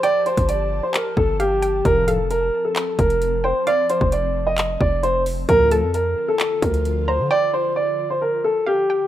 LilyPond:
<<
  \new Staff \with { instrumentName = "Synth pluck" } { \time 4/4 \key f \mixolydian \tempo 4 = 132 g''2 r4 f''8 g''8 | r8 f''2. g''8 | f''2. r4 | r8 a''2. bes''8 |
g''2 r4 f''8 g''8 | }
  \new Staff \with { instrumentName = "Grand piano" } { \time 4/4 \key f \mixolydian d''8 c''8 d''8. c''16 bes'8 a'8 g'4 | bes'8 a'8 bes'8. a'8. bes'4 c''8 | d''8 c''8 d''8. ees''8. d''8 c''8 r8 | bes'8 a'8 bes'8. a'8. bes'4 c''8 |
d''8 c''8 d''8. c''16 bes'8 a'8 g'4 | }
  \new Staff \with { instrumentName = "Ambient pad" } { \clef bass \time 4/4 \key f \mixolydian << { a''1~ | a''1~ | a''1 | f'1~ |
f'1 | } \\ { <f g'>1 | <f c'>1~ | <f c'>1 | <d f>1~ |
<d f>1 | } >> }
  \new Staff \with { instrumentName = "Analog polysynth" } { \clef bass \time 4/4 \key f \mixolydian r1 | <c, a, f>8. r2. r16 | r1 | <d, a, f>8. r2. r16 |
r1 | }
  \new Staff \with { instrumentName = "808-style bass" } { \clef bass \time 4/4 \key f \mixolydian r8. g,,4 r8. g,,4. | f,,4. r4 f,,4~ f,,16 r16 | r8. f,,4.~ f,,16 f,,4. | d,8. f,8. r4 d,4~ d,16 d16 |
r1 | }
  \new DrumStaff \with { instrumentName = "Drums" } \drummode { \time 4/4 hh8 hh16 <hh bd>16 hh4 <hc hh>8 bd8 hh8 hh8 | <hh bd>8 hh8 hh4 <hc hh>8 <hh bd>16 hh16 hh4 | hh8 hh16 bd16 hh4 <hc hh>8 bd8 hh8 hho8 | <hh bd>8 hh8 hh4 <hc hh>8 <hh bd>16 hh16 hh4 |
r4 r4 r4 r4 | }
>>